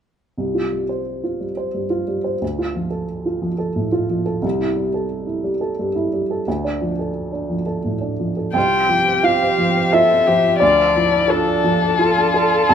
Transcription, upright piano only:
0.38 2.38 C2 soft
0.55 0.82 F4 soft
0.72 1.00 G3 soft
0.89 1.44 C5 soft
1.24 1.51 F4 soft
1.40 1.67 G3 soft
1.57 1.84 C5 soft
1.74 2.01 G2 soft
1.90 2.18 F4 soft
2.08 2.35 G3 soft
2.24 2.41 C5 soft
2.42 4.40 D2 soft
2.59 2.85 F4 soft
2.75 3.02 F3 soft
2.90 3.45 A4 soft
3.26 3.53 F4 soft
3.42 3.69 F3 soft
3.58 3.86 A4 soft
3.76 4.03 A2 soft
3.92 4.20 F4 soft
4.09 4.37 F3 soft
4.26 4.43 A4 soft
4.42 6.41 C2 medium
4.59 4.87 E4 soft
4.76 5.03 G3 soft
4.94 5.48 A4 soft
5.26 5.54 E4 soft
5.44 5.71 G3 soft
5.61 5.88 A4 soft
5.79 6.06 G2 soft
5.95 6.22 E4 soft
6.13 6.40 G3 soft
6.31 6.47 A4 soft
6.48 8.52 D2 medium
6.64 6.91 D4 soft
6.81 7.08 F3 soft
6.99 7.53 A4 soft
7.32 7.60 D4 soft
7.50 7.77 F3 soft
7.66 7.94 A4 soft
7.84 8.12 A2 soft
8.01 8.30 D4 soft
8.20 8.48 F3 soft
8.37 8.55 A4 soft
8.53 10.56 C2 soft
8.53 9.20 G5 medium
8.89 9.45 F3 soft
9.23 9.79 F4 soft
9.23 9.89 F5 medium
9.58 10.13 F3 soft
9.93 10.48 F4 soft
9.93 10.57 E5 medium
10.28 10.61 F3 soft
10.60 12.67 D2 medium
10.60 11.25 D5 medium
10.96 11.51 F3 soft
11.28 11.85 F4 soft
11.28 12.33 A4 medium
11.64 12.20 F3 soft
11.99 12.57 F4 soft
12.34 12.70 A4 soft
12.69 12.74 C2 medium
12.69 12.74 A5 medium

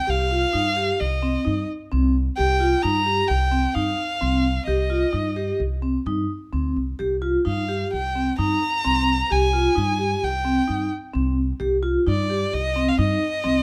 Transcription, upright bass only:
0.08 0.44 C2 medium
0.54 0.90 G2 medium
1.01 1.36 C2 medium
1.47 1.64 G2 medium
1.92 2.27 C2 medium
2.39 2.74 C2 medium
2.84 3.20 G2 medium
3.30 3.65 C2 medium
3.76 3.94 G2 medium
4.22 4.58 C2 medium
4.67 5.03 C2 medium
5.14 5.50 G2 medium
5.60 5.96 C2 medium
6.06 6.24 G2 medium
6.53 6.74 D2 medium
6.76 6.97 C2 medium
7.00 7.36 C2 medium
7.46 7.82 G2 medium
7.93 8.29 C2 medium
8.39 8.57 G2 medium
8.86 9.21 C2 medium
9.31 9.67 C2 medium
9.77 10.13 G2 medium
10.23 10.59 C2 medium
10.70 10.87 G2 medium
11.15 11.51 C2 medium
11.61 11.96 C2 medium
12.07 12.43 G2 medium
12.53 12.89 C2 medium
12.98 13.17 G2 medium
13.45 13.63 C2 medium

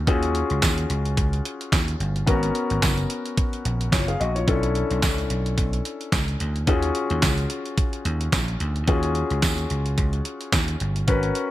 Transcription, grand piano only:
0.07 2.23 C#4 medium
0.07 2.23 F4 medium
0.07 2.24 F#4 medium
0.07 2.24 G#4 medium
2.26 4.43 B3 medium
2.26 4.43 C#4 medium
2.26 3.89 F#4 medium
2.26 3.90 A#4 medium
3.93 4.07 F4 soft
3.93 4.07 C#5 medium
4.08 4.20 G#4 medium
4.08 4.19 F5 medium
4.20 4.35 F#4 medium
4.20 4.35 D#5 medium
4.35 4.62 F4 medium
4.35 4.62 C#5 medium
4.47 6.64 C#4 medium
4.47 6.64 D4 medium
4.47 6.64 E4 medium
4.47 6.64 A4 medium
6.67 8.84 C#4 medium
6.67 8.84 F4 medium
6.67 8.84 F#4 medium
6.67 8.84 G#4 medium
8.87 11.04 C#4 medium
8.87 11.04 F4 medium
8.87 11.04 F#4 medium
8.87 11.05 G#4 medium
11.07 11.51 C#4 medium
11.07 11.51 F#4 medium
11.07 11.51 A#4 medium
11.07 11.51 B4 medium

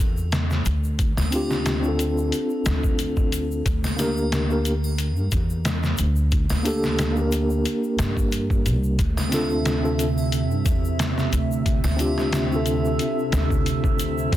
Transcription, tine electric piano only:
1.31 1.78 C4 medium
1.31 1.79 D4 medium
1.31 1.80 F4 medium
1.35 1.81 G4 medium
1.79 3.62 C4 medium
1.79 3.63 D4 medium
1.85 3.65 F4 medium
1.85 3.66 A4 medium
3.97 4.45 A#3 loud
3.97 4.45 D4 medium
3.97 4.46 G4 medium
4.01 4.47 A#4 loud
4.48 4.71 A#3 medium
4.48 4.72 D4 medium
4.48 4.73 G4 medium
4.52 4.74 A#4 medium
6.63 7.11 A#3 medium
6.63 7.12 D4 medium
6.63 7.13 G4 medium
6.68 7.14 A4 loud
7.12 8.95 A#3 medium
7.12 8.96 D4 medium
7.18 8.98 G4 medium
7.18 8.99 A#4 medium
9.29 9.78 C4 medium
9.29 9.79 D4 medium
9.29 9.79 F4 medium
9.34 9.80 A4 loud
9.81 10.04 C4 medium
9.81 10.05 D4 medium
9.81 10.06 F4 medium
9.85 10.07 A4 medium
11.97 12.45 C4 medium
11.97 12.46 D4 medium
11.97 12.46 F4 medium
12.01 12.47 G4 loud
12.46 14.28 C4 medium
12.46 14.30 D4 medium
12.53 14.32 F4 medium
12.53 14.33 A4 medium

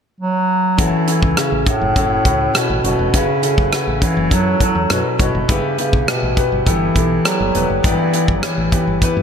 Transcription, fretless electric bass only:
0.79 0.90 F#1 medium
1.23 1.34 C#2 medium
1.52 1.63 A1 medium
1.81 1.92 F#1 medium
1.96 2.18 F#1 medium
2.25 2.47 C#2 medium
2.70 2.81 A1 medium
2.84 2.95 F#1 medium
2.99 3.10 E1 medium
3.14 3.25 F#1 medium
3.58 3.69 F#1 medium
3.87 3.98 A1 medium
4.17 4.28 F#1 medium
4.31 4.53 F#2 loud
4.75 4.86 E2 medium
4.90 5.01 F#2 medium
5.20 5.31 F#1 medium
5.35 5.46 F#1 medium
5.49 5.60 G1 loud
5.93 6.04 B1 medium
6.23 6.34 A1 medium
6.52 6.63 G1 medium
6.66 6.89 G1 medium
6.96 7.18 B1 medium
7.40 7.51 G1 medium
7.55 7.66 E1 medium
7.70 7.81 F#1 medium
7.84 7.95 G1 loud
8.28 8.39 G1 medium
8.58 8.69 A1 medium
8.87 8.98 G1 medium
9.17 9.22 G2 medium

